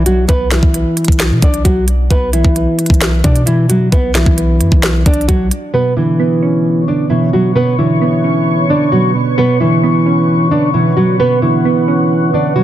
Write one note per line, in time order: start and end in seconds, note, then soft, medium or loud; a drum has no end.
0.00 0.26 B1 loud
0.06 0.25 F#3 medium
0.06 0.25 F#4 medium
0.06 closed hi-hat medium
0.28 0.61 B1 loud
0.28 0.47 B3 loud
0.28 0.48 B4 medium
0.28 kick loud
0.28 closed hi-hat medium
0.51 1.39 E3 medium
0.51 1.38 E4 medium
0.51 snare medium
0.51 closed hi-hat medium
0.63 0.85 B1 loud
0.63 kick medium
0.74 closed hi-hat medium
0.97 closed hi-hat medium
1.05 1.32 B1 loud
1.05 kick medium
1.05 closed hi-hat medium
1.12 closed hi-hat medium
1.20 snare loud
1.20 closed hi-hat medium
1.31 1.42 B2 loud
1.42 1.64 B1 loud
1.42 1.61 D4 medium
1.42 1.62 D5 medium
1.42 kick loud
1.42 closed hi-hat medium
1.54 closed hi-hat medium
1.65 2.09 B1 loud
1.65 1.84 F#3 medium
1.65 1.84 F#4 medium
1.65 kick medium
1.65 closed hi-hat medium
1.88 closed hi-hat medium
2.10 2.43 B1 loud
2.10 2.29 B3 loud
2.10 2.30 B4 medium
2.10 kick loud
2.10 closed hi-hat medium
2.33 3.20 E3 medium
2.33 3.20 E4 medium
2.33 closed hi-hat medium
2.44 2.66 B1 loud
2.44 kick medium
2.56 closed hi-hat medium
2.79 closed hi-hat medium
2.86 3.23 B1 loud
2.86 kick medium
2.86 closed hi-hat medium
2.94 closed hi-hat medium
3.01 snare loud
3.01 closed hi-hat medium
3.24 3.90 B2 loud
3.24 3.43 D4 medium
3.24 3.43 D5 medium
3.24 kick loud
3.24 closed hi-hat medium
3.36 closed hi-hat medium
3.46 3.66 E3 medium
3.46 3.65 E4 medium
3.46 closed hi-hat medium
3.69 3.89 F#3 medium
3.69 3.88 F#4 medium
3.69 closed hi-hat medium
3.92 4.25 B1 loud
3.92 4.11 B3 loud
3.92 4.12 B4 medium
3.92 kick loud
3.92 closed hi-hat medium
4.15 5.02 E3 medium
4.15 5.02 E4 medium
4.15 snare medium
4.15 closed hi-hat medium
4.26 4.62 B1 loud
4.26 kick medium
4.38 closed hi-hat medium
4.60 4.71 F#2 medium
4.60 closed hi-hat medium
4.72 5.05 B1 loud
4.72 kick medium
4.83 snare loud
4.83 closed hi-hat medium
5.06 5.28 B1 loud
5.06 5.25 D4 medium
5.06 5.26 D5 medium
5.06 kick loud
5.06 closed hi-hat medium
5.14 closed hi-hat medium
5.21 closed hi-hat soft
5.28 5.51 B1 loud
5.28 5.48 F#3 medium
5.28 5.47 F#4 medium
5.28 kick medium
5.28 closed hi-hat medium
5.51 closed hi-hat medium
5.74 6.88 B2 medium
5.74 5.93 B3 loud
5.74 12.64 B4 medium
5.74 5.93 B4 medium
5.74 9.34 C#5 medium
5.74 12.64 C#6 medium
5.97 6.87 D3 medium
5.97 6.84 E3 medium
5.97 6.84 E4 medium
6.20 7.33 B3 loud
6.42 7.56 C#4 medium
6.88 7.78 D3 medium
6.88 7.07 D4 medium
6.88 7.07 D5 medium
7.10 7.32 B2 medium
7.10 7.29 E3 medium
7.10 7.29 E4 medium
7.33 7.55 B2 medium
7.33 7.53 F#3 medium
7.33 7.52 F#4 medium
7.56 8.70 B2 loud
7.56 7.75 B3 loud
7.56 7.75 B4 medium
7.79 8.68 D3 medium
7.79 8.66 E3 medium
7.79 8.66 E4 medium
8.02 9.15 B3 medium
8.24 9.38 C#4 medium
8.70 9.38 D3 medium
8.70 8.89 D4 medium
8.70 8.89 D5 medium
8.92 9.14 B2 medium
8.92 9.11 F#3 medium
8.92 9.11 F#4 medium
9.15 9.37 B2 medium
9.38 10.52 B2 loud
9.38 9.57 B3 loud
9.38 9.57 B4 medium
9.38 12.64 F#5 medium
9.60 10.50 D3 medium
9.60 10.48 E3 medium
9.60 10.47 E4 medium
9.83 10.97 B3 loud
10.06 11.20 C#4 medium
10.51 11.41 D3 medium
10.51 10.70 D4 medium
10.51 10.71 D5 medium
10.74 10.96 B2 medium
10.74 10.93 E3 medium
10.74 10.93 E4 medium
10.97 11.19 B2 medium
10.97 11.16 F#3 medium
10.97 11.16 F#4 medium
11.20 12.33 B2 medium
11.20 11.39 B3 loud
11.20 11.39 B4 medium
11.42 12.32 D3 medium
11.42 12.30 E3 medium
11.42 12.29 E4 medium
11.65 12.64 B3 medium
11.88 12.64 C#4 medium
12.33 12.64 D3 medium
12.33 12.53 D4 medium
12.33 12.53 D5 medium
12.56 12.64 B2 medium
12.56 12.64 F#3 medium
12.56 12.64 F#4 medium